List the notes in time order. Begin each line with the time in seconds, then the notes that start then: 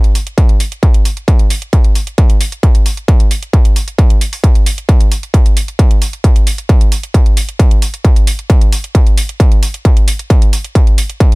0.04 closed hi-hat
0.15 open hi-hat
0.27 closed hi-hat
0.38 kick, closed hi-hat
0.49 closed hi-hat
0.60 open hi-hat
0.72 closed hi-hat
0.83 kick, closed hi-hat
0.94 closed hi-hat
1.05 open hi-hat
1.17 closed hi-hat
1.28 kick, closed hi-hat
1.39 closed hi-hat
1.50 open hi-hat
1.62 closed hi-hat
1.73 kick, closed hi-hat
1.84 closed hi-hat
1.95 open hi-hat
2.07 closed hi-hat
2.18 kick, closed hi-hat
2.30 closed hi-hat
2.41 open hi-hat
2.52 closed hi-hat
2.63 kick, closed hi-hat
2.75 closed hi-hat
2.86 open hi-hat
2.97 closed hi-hat
3.08 kick, closed hi-hat
3.20 closed hi-hat
3.31 open hi-hat
3.43 closed hi-hat
3.53 kick, closed hi-hat
3.65 closed hi-hat
3.76 open hi-hat
3.88 closed hi-hat
3.98 kick, closed hi-hat
4.10 closed hi-hat
4.21 open hi-hat
4.33 open hi-hat
4.44 kick, closed hi-hat
4.55 closed hi-hat
4.66 open hi-hat
4.78 closed hi-hat
4.89 kick, closed hi-hat
5.01 closed hi-hat
5.12 open hi-hat
5.23 closed hi-hat
5.34 kick, closed hi-hat
5.46 closed hi-hat
5.57 open hi-hat
5.68 closed hi-hat
5.79 kick, closed hi-hat
5.91 closed hi-hat
6.02 open hi-hat
6.13 closed hi-hat
6.24 kick, closed hi-hat
6.36 closed hi-hat
6.47 open hi-hat
6.58 closed hi-hat
6.69 kick, closed hi-hat
6.81 closed hi-hat
6.92 open hi-hat
7.03 closed hi-hat
7.14 kick, closed hi-hat
7.26 closed hi-hat
7.37 open hi-hat
7.49 closed hi-hat
7.59 kick, closed hi-hat
7.71 closed hi-hat
7.82 open hi-hat
7.94 closed hi-hat
8.05 kick, closed hi-hat
8.16 closed hi-hat
8.27 open hi-hat
8.39 closed hi-hat
8.50 kick, closed hi-hat
8.61 closed hi-hat
8.72 open hi-hat
8.84 closed hi-hat
8.95 kick, closed hi-hat
9.07 closed hi-hat
9.18 open hi-hat
9.29 closed hi-hat
9.40 kick, closed hi-hat
9.52 closed hi-hat
9.63 open hi-hat
9.74 closed hi-hat
9.85 kick, closed hi-hat
9.97 closed hi-hat
10.08 open hi-hat
10.19 closed hi-hat
10.30 kick, closed hi-hat
10.42 closed hi-hat
10.53 open hi-hat
10.64 closed hi-hat
10.75 kick, closed hi-hat
10.87 closed hi-hat
10.98 open hi-hat
11.10 closed hi-hat
11.20 kick, closed hi-hat